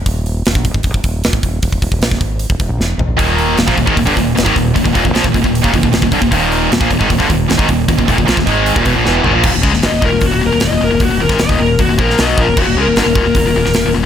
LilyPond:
<<
  \new Staff \with { instrumentName = "Lead electric guitar" } { \time 4/4 \key ees \major \tempo 4 = 154 r1 | r1 | r1 | r1 |
r1 | r1 | r4 ees''8 bes'8 ges'8 bes'8 ees''8 bes'8 | ges'8 bes'8 ees''8 bes'8 ges'8 bes'8 ees''8 bes'8 |
ges'8 bes'8 bes'2~ bes'8 r8 | }
  \new Staff \with { instrumentName = "Distorted electric guitar" } { \clef bass \time 4/4 \key ees \major r1 | r1 | <ees, bes, ees>4 <ees, bes,>16 <bes, f>16 <ees, bes,>16 <aes, ees>16 <ees, bes,>16 <g, d>16 <ees, bes,>8 <ees, bes,>16 <aes, ees>16 <ees, bes,>8 | <ees, bes,>16 <ees, bes,>16 <ees, bes,>16 <ees, bes,>16 <bes, f>16 <ees, bes,>16 <ees, bes,>16 <ees, bes,>8 <ees, bes,>16 <ees, bes,>16 <ees, bes,>16 <ees, bes,>16 <ees, bes,>16 <g, d>16 <ees, bes,>16 |
<ees, bes, ees>4 <ees, bes,>16 <bes, f>16 <ees, bes,>16 <aes, ees>16 <ees, bes,>16 <g, d>16 <ees, bes,>8 <ees, bes,>16 <aes, ees>16 <ees, bes,>8 | <ees, bes,>16 <ees, bes,>16 <ees, bes,>16 <ees, bes,>16 <bes, f>16 <ees, bes,>16 <aes, ees aes>8. <ees, bes,>16 <fes, ces>16 <bes, f>16 <fes, ces fes>8 <aes, ees>16 <bes, f>16 | <ees, bes,>16 <ees, bes,>16 <des aes>16 <ees, bes,>16 <g, d>16 <ees, bes,>16 <ees, bes,>16 <ees, bes,>16 <ees, bes,>16 <ees, bes,>16 <ees, bes,>16 <ees, bes,>16 <ees, bes,>16 <ees, bes,>16 <ees, bes,>16 <ees, bes,>16 | <ees, bes,>16 <ees, bes,>16 <ees, bes,>16 <aes, ees>16 <ees, bes,>16 <ees, bes,>16 <ees, bes,>8 <ees, bes,>16 <ees, bes,>16 <bes, f bes>8 <ces ges ces'>8 <bes, f>16 <ees, bes,>16 |
<ees, bes,>16 <ees, bes,>16 <des aes>16 <ees, bes,>16 <g, d>16 <ees, bes,>16 <ees, bes,>16 <ees, bes,>16 <ees, bes,>16 <ees, bes,>16 <ees, bes,>16 <ees, bes,>16 <ees, bes,>16 <ees, bes,>16 <ees, bes,>16 r16 | }
  \new Staff \with { instrumentName = "Distorted electric guitar" } { \clef bass \time 4/4 \key ees \major r1 | r1 | <ees, bes, ees>4 <ees, bes,>16 <bes, f>16 <ees, bes,>16 <aes, ees>16 <ees, bes,>16 <g, d>16 <ees, bes,>8 <ees, bes,>16 <aes, ees>16 <ees, bes,>8 | <ees, bes,>16 <ees, bes,>16 <ees, bes,>16 <ees, bes,>16 <bes, f>16 <ees, bes,>16 <ees, bes,>16 <ees, bes,>8 <ees, bes,>16 <ees, bes,>16 <ees, bes,>16 <ees, bes,>16 <ees, bes,>16 <g, d>16 <ees, bes,>16 |
<ees, bes, ees>4 <ees, bes,>16 <bes, f>16 <ees, bes,>16 <aes, ees>16 <ees, bes,>16 <g, d>16 <ees, bes,>8 <ees, bes,>16 <aes, ees>16 <ees, bes,>8 | <ees, bes,>16 <ees, bes,>16 <ees, bes,>16 <ees, bes,>16 <bes, f>16 <ees, bes,>16 <aes, ees aes>8. <ees, bes,>16 <fes, ces>16 <bes, f>16 <fes, ces fes>8 <aes, ees>16 <bes, f>16 | r1 | r1 |
r1 | }
  \new Staff \with { instrumentName = "Fingered electric bass" } { \clef bass \time 4/4 \key ees \major ees,,4 ees,,16 bes,,16 ees,,16 aes,,16 ees,,16 g,,16 ees,,8 ees,,16 aes,,16 ees,,8 | ees,,16 ees,,16 ees,,16 ees,,16 bes,,16 ees,,16 aes,,8. ees,,16 fes,,16 bes,,16 fes,,8 aes,,16 bes,,16 | ees,,4 ees,,16 bes,,16 ees,,16 aes,,16 ees,,16 g,,16 ees,,8 ees,,16 aes,,16 ees,,8 | ees,,16 ees,,16 ees,,16 ees,,16 bes,,16 ees,,16 ees,,16 ees,,8 ees,,16 ees,,16 ees,,16 ees,,16 ees,,16 g,,16 ees,,16 |
ees,,4 ees,,16 bes,,16 ees,,16 aes,,16 ees,,16 g,,16 ees,,8 ees,,16 aes,,16 ees,,8 | ees,,16 ees,,16 ees,,16 ees,,16 bes,,16 ees,,16 aes,,8. ees,,16 fes,,16 bes,,16 fes,,8 aes,,16 bes,,16 | ees,,16 ees,,16 des,16 ees,,16 g,,16 ees,,16 ees,,16 ees,,16 ees,,16 ees,,16 ees,,16 ees,,16 ees,,16 ees,,16 ees,,16 ees,,16 | ees,,16 ees,,16 ees,,16 aes,,16 ees,,16 ees,,16 ees,,8 ees,,16 ees,,16 bes,,8 ces,8 bes,,16 ees,,16 |
ees,,16 ees,,16 des,16 ees,,16 g,,16 ees,,16 ees,,16 ees,,16 ees,,16 ees,,16 ees,,16 ees,,16 ees,,16 ees,,16 ees,,16 r16 | }
  \new DrumStaff \with { instrumentName = "Drums" } \drummode { \time 4/4 <hho bd>8 hho8 <hho sn>16 bd16 <hho bd>16 bd16 <hho bd>16 bd16 <hho bd>8 <hho sn>16 bd16 <hho bd>8 | <hho bd>16 bd16 <hho bd>16 bd16 <hho sn>16 <bd sn>16 <hho bd>8 hho16 bd16 <hho bd>8 sn8 tomfh8 | <hho bd>8 hho8 <hho sn>16 <bd sn>16 <hho bd>16 bd16 <hho bd>16 bd16 <hho bd>8 <hho sn>16 bd16 <hho bd>8 | <hho bd>16 bd16 <hho bd>16 bd16 <hho sn>16 bd16 <hho bd>16 bd16 hho16 bd16 <hho bd>16 bd16 <hho sn>16 bd16 <hho bd>16 bd16 |
<hho bd>8 hho8 <hho sn>16 bd16 <hho bd>16 bd16 <hho bd>16 bd16 <hho bd>8 <hho sn>16 bd16 <hho bd>8 | <hho bd>16 bd16 <hho bd>16 bd16 <hho sn>16 <bd sn>16 <hho bd>8 hho16 bd16 <hho bd>8 sn8 tomfh8 | <cymc bd>8 bd16 sn16 <hho sn>8 bd8 <hho bd>4 <hho sn>4 | <hho bd>8. <bd sn>16 <hho sn>16 bd8. <hho bd>8 bd16 sn16 <hho sn>8 bd8 |
<cymc bd>4 <hho sn>8 bd8 <hho bd>8. sn16 <hho sn>4 | }
>>